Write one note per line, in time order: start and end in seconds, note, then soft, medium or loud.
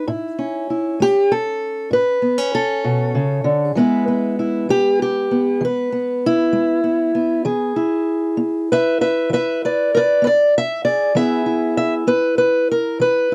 0.08 0.63 A2 medium
0.08 0.70 E4 medium
0.39 2.22 C#4 soft
0.70 1.02 E4 soft
1.00 1.55 A3 medium
1.00 1.32 G4 loud
1.32 1.92 A4 medium
1.91 2.47 A2 medium
1.91 2.54 B4 medium
2.22 2.38 B3 soft
2.38 3.76 C#4 soft
2.55 3.77 A4 loud
2.84 3.15 B2 medium
3.15 3.44 C#3 medium
3.44 3.75 D3 medium
3.75 4.31 E3 medium
3.75 4.69 G#3 medium
3.75 4.07 B3 medium
3.75 4.39 E4 medium
3.75 5.64 B4 medium
4.08 5.31 B3 soft
4.39 4.70 E4 soft
4.69 5.24 G#3 medium
4.69 5.00 G4 loud
5.02 5.62 G4 medium
5.31 5.92 B3 soft
5.61 6.16 E3 medium
5.65 6.24 B4 medium
5.92 6.83 B3 soft
6.26 7.45 E4 loud
6.53 7.08 G#3 medium
6.84 7.14 B3 soft
7.15 7.76 B3 soft
7.45 8.01 E3 medium
7.45 8.69 G#4 medium
7.76 11.12 E4 medium
8.37 8.93 B3 medium
8.72 9.00 B4 loud
8.72 9.00 E5 loud
9.01 9.31 B4 medium
9.01 9.31 E5 loud
9.29 9.85 E3 medium
9.29 9.63 B4 medium
9.34 9.63 E5 loud
9.65 9.94 B4 medium
9.65 9.94 D5 medium
9.95 9.98 A#4 medium
9.95 10.23 B4 medium
9.95 10.25 D5 loud
10.22 10.78 B3 medium
10.22 10.26 B4 loud
10.27 10.56 D5 loud
10.58 10.84 E5 loud
10.85 11.12 G#4 soft
10.85 11.15 D5 loud
11.15 11.71 E3 medium
11.15 12.07 B3 medium
11.15 11.46 E4 medium
11.15 12.07 G#4 medium
11.15 11.76 E5 loud
11.46 13.31 E4 soft
11.77 11.93 E5 loud
12.07 12.63 B3 medium
12.07 12.37 B4 loud
12.38 12.69 B4 loud
12.71 13.01 A#4 medium
13.00 13.35 E3 medium
13.00 13.35 B4 medium